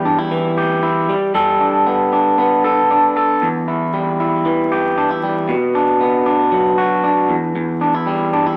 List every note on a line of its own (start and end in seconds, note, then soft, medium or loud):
0.00 1.14 E2 medium
0.00 1.09 G3 medium
0.00 0.57 G4 medium
0.05 0.18 D4 medium
0.18 0.82 E4 soft
0.31 1.09 E3 medium
0.57 1.35 G4 medium
0.83 1.14 E4 medium
1.09 1.34 G3 medium
1.35 3.94 G3 medium
1.35 2.63 A4 medium
1.61 2.11 D4 medium
1.87 2.38 B3 medium
2.13 2.90 D4 medium
2.38 3.93 B3 medium
2.64 3.15 A4 medium
2.91 3.48 D4 medium
3.17 3.47 A4 medium
3.42 5.49 E2 medium
3.68 4.19 E4 medium
3.94 5.22 G3 medium
4.20 4.97 E4 medium
4.45 5.54 E3 medium
4.72 5.55 G4 medium
4.98 5.11 D4 medium
5.11 5.55 E4 medium
5.24 5.55 G3 medium
5.49 7.36 B2 medium
5.75 6.25 D4 medium
6.01 8.06 B3 medium
6.26 7.03 D4 medium
6.52 7.35 F#3 medium
6.78 7.35 F#4 medium
7.04 7.35 D4 medium
7.30 7.54 E2 medium
7.55 8.57 E2 medium
7.81 7.94 D4 medium
7.94 8.33 E4 medium
8.06 8.57 G3 medium
8.33 8.46 D4 medium
8.46 8.57 E4 medium